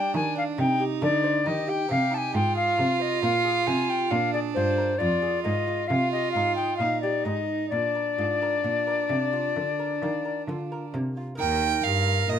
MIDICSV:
0, 0, Header, 1, 5, 480
1, 0, Start_track
1, 0, Tempo, 886263
1, 315, Time_signature, 4, 2, 24, 8
1, 3678, Tempo, 914634
1, 6617, End_track
2, 0, Start_track
2, 0, Title_t, "Recorder"
2, 0, Program_c, 0, 74
2, 0, Note_on_c, 0, 79, 82
2, 79, Note_off_c, 0, 79, 0
2, 82, Note_on_c, 0, 80, 83
2, 196, Note_off_c, 0, 80, 0
2, 205, Note_on_c, 0, 77, 73
2, 237, Note_off_c, 0, 77, 0
2, 323, Note_on_c, 0, 79, 91
2, 452, Note_off_c, 0, 79, 0
2, 558, Note_on_c, 0, 74, 88
2, 796, Note_on_c, 0, 75, 76
2, 804, Note_off_c, 0, 74, 0
2, 917, Note_on_c, 0, 79, 85
2, 925, Note_off_c, 0, 75, 0
2, 1031, Note_off_c, 0, 79, 0
2, 1035, Note_on_c, 0, 77, 80
2, 1160, Note_on_c, 0, 81, 71
2, 1168, Note_off_c, 0, 77, 0
2, 1180, Note_on_c, 0, 80, 77
2, 1185, Note_off_c, 0, 81, 0
2, 1269, Note_off_c, 0, 80, 0
2, 1273, Note_on_c, 0, 79, 83
2, 1385, Note_off_c, 0, 79, 0
2, 1388, Note_on_c, 0, 77, 86
2, 1633, Note_on_c, 0, 75, 77
2, 1642, Note_off_c, 0, 77, 0
2, 1749, Note_off_c, 0, 75, 0
2, 1753, Note_on_c, 0, 77, 85
2, 1988, Note_on_c, 0, 80, 87
2, 1996, Note_off_c, 0, 77, 0
2, 2112, Note_on_c, 0, 79, 76
2, 2120, Note_off_c, 0, 80, 0
2, 2225, Note_on_c, 0, 77, 90
2, 2233, Note_off_c, 0, 79, 0
2, 2345, Note_off_c, 0, 77, 0
2, 2348, Note_on_c, 0, 74, 69
2, 2381, Note_off_c, 0, 74, 0
2, 2461, Note_on_c, 0, 72, 80
2, 2699, Note_on_c, 0, 74, 67
2, 2708, Note_off_c, 0, 72, 0
2, 2938, Note_off_c, 0, 74, 0
2, 2941, Note_on_c, 0, 75, 73
2, 3183, Note_on_c, 0, 77, 76
2, 3191, Note_off_c, 0, 75, 0
2, 3309, Note_off_c, 0, 77, 0
2, 3315, Note_on_c, 0, 75, 71
2, 3418, Note_off_c, 0, 75, 0
2, 3422, Note_on_c, 0, 77, 73
2, 3547, Note_off_c, 0, 77, 0
2, 3552, Note_on_c, 0, 79, 70
2, 3663, Note_off_c, 0, 79, 0
2, 3666, Note_on_c, 0, 77, 75
2, 3789, Note_off_c, 0, 77, 0
2, 3796, Note_on_c, 0, 74, 60
2, 3914, Note_on_c, 0, 75, 67
2, 3922, Note_off_c, 0, 74, 0
2, 4149, Note_off_c, 0, 75, 0
2, 4152, Note_on_c, 0, 74, 76
2, 5585, Note_off_c, 0, 74, 0
2, 6092, Note_on_c, 0, 70, 65
2, 6617, Note_off_c, 0, 70, 0
2, 6617, End_track
3, 0, Start_track
3, 0, Title_t, "Violin"
3, 0, Program_c, 1, 40
3, 0, Note_on_c, 1, 62, 63
3, 318, Note_on_c, 1, 63, 68
3, 326, Note_off_c, 1, 62, 0
3, 794, Note_off_c, 1, 63, 0
3, 798, Note_on_c, 1, 67, 61
3, 1274, Note_on_c, 1, 65, 74
3, 1282, Note_off_c, 1, 67, 0
3, 2228, Note_on_c, 1, 62, 66
3, 2236, Note_off_c, 1, 65, 0
3, 2708, Note_off_c, 1, 62, 0
3, 2712, Note_on_c, 1, 65, 55
3, 3185, Note_off_c, 1, 65, 0
3, 3196, Note_on_c, 1, 65, 66
3, 3686, Note_on_c, 1, 63, 50
3, 3694, Note_off_c, 1, 65, 0
3, 4166, Note_on_c, 1, 62, 51
3, 4174, Note_off_c, 1, 63, 0
3, 5855, Note_off_c, 1, 62, 0
3, 6094, Note_on_c, 1, 79, 80
3, 6324, Note_on_c, 1, 77, 76
3, 6332, Note_off_c, 1, 79, 0
3, 6563, Note_on_c, 1, 75, 68
3, 6571, Note_off_c, 1, 77, 0
3, 6617, Note_off_c, 1, 75, 0
3, 6617, End_track
4, 0, Start_track
4, 0, Title_t, "Lute"
4, 0, Program_c, 2, 24
4, 0, Note_on_c, 2, 55, 52
4, 0, Note_on_c, 2, 67, 47
4, 55, Note_off_c, 2, 55, 0
4, 75, Note_on_c, 2, 51, 57
4, 146, Note_off_c, 2, 67, 0
4, 193, Note_on_c, 2, 62, 44
4, 292, Note_off_c, 2, 51, 0
4, 313, Note_off_c, 2, 62, 0
4, 313, Note_on_c, 2, 48, 49
4, 432, Note_on_c, 2, 67, 43
4, 532, Note_off_c, 2, 48, 0
4, 551, Note_on_c, 2, 50, 52
4, 552, Note_on_c, 2, 63, 42
4, 626, Note_off_c, 2, 67, 0
4, 671, Note_on_c, 2, 72, 49
4, 745, Note_off_c, 2, 63, 0
4, 772, Note_off_c, 2, 50, 0
4, 790, Note_on_c, 2, 51, 47
4, 791, Note_on_c, 2, 63, 43
4, 865, Note_off_c, 2, 72, 0
4, 906, Note_on_c, 2, 67, 45
4, 984, Note_off_c, 2, 63, 0
4, 1011, Note_off_c, 2, 51, 0
4, 1020, Note_on_c, 2, 48, 48
4, 1022, Note_on_c, 2, 60, 42
4, 1102, Note_off_c, 2, 67, 0
4, 1141, Note_on_c, 2, 63, 42
4, 1219, Note_off_c, 2, 60, 0
4, 1244, Note_off_c, 2, 48, 0
4, 1261, Note_on_c, 2, 44, 47
4, 1267, Note_off_c, 2, 63, 0
4, 1382, Note_on_c, 2, 68, 46
4, 1485, Note_off_c, 2, 44, 0
4, 1499, Note_on_c, 2, 48, 47
4, 1503, Note_on_c, 2, 65, 43
4, 1579, Note_off_c, 2, 68, 0
4, 1623, Note_on_c, 2, 72, 46
4, 1698, Note_off_c, 2, 65, 0
4, 1723, Note_off_c, 2, 48, 0
4, 1747, Note_on_c, 2, 46, 51
4, 1747, Note_on_c, 2, 65, 47
4, 1818, Note_off_c, 2, 72, 0
4, 1865, Note_on_c, 2, 68, 46
4, 1939, Note_off_c, 2, 65, 0
4, 1966, Note_off_c, 2, 46, 0
4, 1988, Note_on_c, 2, 48, 54
4, 1990, Note_on_c, 2, 60, 46
4, 2058, Note_off_c, 2, 68, 0
4, 2111, Note_on_c, 2, 65, 44
4, 2181, Note_off_c, 2, 60, 0
4, 2207, Note_off_c, 2, 48, 0
4, 2225, Note_on_c, 2, 46, 46
4, 2230, Note_off_c, 2, 65, 0
4, 2348, Note_on_c, 2, 68, 41
4, 2446, Note_off_c, 2, 46, 0
4, 2471, Note_on_c, 2, 43, 47
4, 2472, Note_on_c, 2, 65, 42
4, 2542, Note_off_c, 2, 68, 0
4, 2586, Note_on_c, 2, 70, 43
4, 2663, Note_off_c, 2, 65, 0
4, 2690, Note_off_c, 2, 43, 0
4, 2709, Note_on_c, 2, 41, 46
4, 2709, Note_on_c, 2, 65, 39
4, 2780, Note_off_c, 2, 70, 0
4, 2829, Note_on_c, 2, 68, 40
4, 2902, Note_off_c, 2, 65, 0
4, 2930, Note_off_c, 2, 41, 0
4, 2947, Note_on_c, 2, 44, 46
4, 2950, Note_on_c, 2, 58, 37
4, 3023, Note_off_c, 2, 68, 0
4, 3073, Note_on_c, 2, 65, 40
4, 3144, Note_off_c, 2, 58, 0
4, 3170, Note_off_c, 2, 44, 0
4, 3194, Note_off_c, 2, 65, 0
4, 3198, Note_on_c, 2, 48, 44
4, 3318, Note_on_c, 2, 67, 39
4, 3416, Note_off_c, 2, 48, 0
4, 3445, Note_on_c, 2, 44, 42
4, 3445, Note_on_c, 2, 63, 36
4, 3510, Note_off_c, 2, 67, 0
4, 3562, Note_on_c, 2, 75, 41
4, 3634, Note_off_c, 2, 63, 0
4, 3662, Note_off_c, 2, 44, 0
4, 3684, Note_on_c, 2, 63, 38
4, 3686, Note_on_c, 2, 46, 44
4, 3752, Note_off_c, 2, 75, 0
4, 3804, Note_on_c, 2, 67, 40
4, 3872, Note_off_c, 2, 63, 0
4, 3900, Note_off_c, 2, 46, 0
4, 3920, Note_on_c, 2, 44, 48
4, 3924, Note_on_c, 2, 63, 38
4, 3993, Note_off_c, 2, 67, 0
4, 4113, Note_off_c, 2, 63, 0
4, 4140, Note_off_c, 2, 44, 0
4, 4165, Note_on_c, 2, 46, 41
4, 4287, Note_on_c, 2, 70, 35
4, 4384, Note_off_c, 2, 46, 0
4, 4409, Note_on_c, 2, 65, 33
4, 4410, Note_on_c, 2, 44, 39
4, 4478, Note_off_c, 2, 70, 0
4, 4533, Note_on_c, 2, 70, 37
4, 4599, Note_off_c, 2, 65, 0
4, 4627, Note_off_c, 2, 44, 0
4, 4647, Note_on_c, 2, 65, 33
4, 4650, Note_on_c, 2, 46, 37
4, 4721, Note_off_c, 2, 70, 0
4, 4769, Note_on_c, 2, 70, 36
4, 4839, Note_off_c, 2, 65, 0
4, 4868, Note_off_c, 2, 46, 0
4, 4884, Note_on_c, 2, 48, 41
4, 4887, Note_on_c, 2, 58, 34
4, 4961, Note_off_c, 2, 70, 0
4, 5010, Note_on_c, 2, 65, 37
4, 5080, Note_off_c, 2, 58, 0
4, 5106, Note_off_c, 2, 48, 0
4, 5132, Note_on_c, 2, 50, 39
4, 5202, Note_off_c, 2, 65, 0
4, 5254, Note_on_c, 2, 70, 35
4, 5350, Note_off_c, 2, 50, 0
4, 5374, Note_on_c, 2, 51, 41
4, 5378, Note_on_c, 2, 65, 33
4, 5443, Note_off_c, 2, 70, 0
4, 5494, Note_on_c, 2, 70, 37
4, 5566, Note_off_c, 2, 65, 0
4, 5591, Note_off_c, 2, 51, 0
4, 5616, Note_on_c, 2, 50, 42
4, 5619, Note_on_c, 2, 65, 35
4, 5685, Note_off_c, 2, 70, 0
4, 5739, Note_on_c, 2, 70, 37
4, 5808, Note_off_c, 2, 65, 0
4, 5834, Note_off_c, 2, 50, 0
4, 5854, Note_on_c, 2, 48, 44
4, 5856, Note_on_c, 2, 58, 37
4, 5929, Note_off_c, 2, 70, 0
4, 5976, Note_on_c, 2, 65, 34
4, 6047, Note_off_c, 2, 58, 0
4, 6072, Note_off_c, 2, 48, 0
4, 6072, Note_on_c, 2, 58, 44
4, 6080, Note_off_c, 2, 65, 0
4, 6082, Note_on_c, 2, 63, 45
4, 6091, Note_on_c, 2, 70, 43
4, 6098, Note_on_c, 2, 39, 47
4, 6309, Note_off_c, 2, 39, 0
4, 6336, Note_on_c, 2, 43, 46
4, 6544, Note_off_c, 2, 43, 0
4, 6567, Note_on_c, 2, 46, 51
4, 6617, Note_off_c, 2, 46, 0
4, 6617, Note_off_c, 2, 58, 0
4, 6617, Note_off_c, 2, 63, 0
4, 6617, Note_off_c, 2, 70, 0
4, 6617, End_track
5, 0, Start_track
5, 0, Title_t, "Cello"
5, 0, Program_c, 3, 42
5, 0, Note_on_c, 3, 55, 71
5, 60, Note_off_c, 3, 55, 0
5, 78, Note_on_c, 3, 51, 68
5, 299, Note_off_c, 3, 51, 0
5, 316, Note_on_c, 3, 48, 74
5, 538, Note_off_c, 3, 48, 0
5, 554, Note_on_c, 3, 50, 68
5, 778, Note_off_c, 3, 50, 0
5, 794, Note_on_c, 3, 51, 62
5, 1017, Note_off_c, 3, 51, 0
5, 1036, Note_on_c, 3, 48, 69
5, 1257, Note_off_c, 3, 48, 0
5, 1270, Note_on_c, 3, 44, 72
5, 1494, Note_off_c, 3, 44, 0
5, 1511, Note_on_c, 3, 48, 68
5, 1734, Note_off_c, 3, 48, 0
5, 1748, Note_on_c, 3, 46, 65
5, 1971, Note_off_c, 3, 46, 0
5, 1989, Note_on_c, 3, 48, 64
5, 2212, Note_off_c, 3, 48, 0
5, 2228, Note_on_c, 3, 46, 66
5, 2453, Note_off_c, 3, 46, 0
5, 2471, Note_on_c, 3, 43, 62
5, 2694, Note_off_c, 3, 43, 0
5, 2714, Note_on_c, 3, 41, 62
5, 2937, Note_off_c, 3, 41, 0
5, 2956, Note_on_c, 3, 44, 60
5, 3179, Note_off_c, 3, 44, 0
5, 3198, Note_on_c, 3, 48, 64
5, 3421, Note_off_c, 3, 48, 0
5, 3441, Note_on_c, 3, 44, 54
5, 3664, Note_off_c, 3, 44, 0
5, 3682, Note_on_c, 3, 46, 54
5, 3903, Note_off_c, 3, 46, 0
5, 3920, Note_on_c, 3, 44, 55
5, 4144, Note_off_c, 3, 44, 0
5, 4163, Note_on_c, 3, 46, 56
5, 4387, Note_off_c, 3, 46, 0
5, 4408, Note_on_c, 3, 44, 54
5, 4630, Note_off_c, 3, 44, 0
5, 4649, Note_on_c, 3, 46, 49
5, 4872, Note_off_c, 3, 46, 0
5, 4889, Note_on_c, 3, 48, 53
5, 5113, Note_off_c, 3, 48, 0
5, 5133, Note_on_c, 3, 50, 57
5, 5354, Note_off_c, 3, 50, 0
5, 5373, Note_on_c, 3, 51, 53
5, 5595, Note_off_c, 3, 51, 0
5, 5611, Note_on_c, 3, 50, 53
5, 5836, Note_off_c, 3, 50, 0
5, 5856, Note_on_c, 3, 48, 51
5, 6077, Note_off_c, 3, 48, 0
5, 6096, Note_on_c, 3, 39, 68
5, 6313, Note_off_c, 3, 39, 0
5, 6332, Note_on_c, 3, 43, 57
5, 6559, Note_off_c, 3, 43, 0
5, 6564, Note_on_c, 3, 46, 57
5, 6617, Note_off_c, 3, 46, 0
5, 6617, End_track
0, 0, End_of_file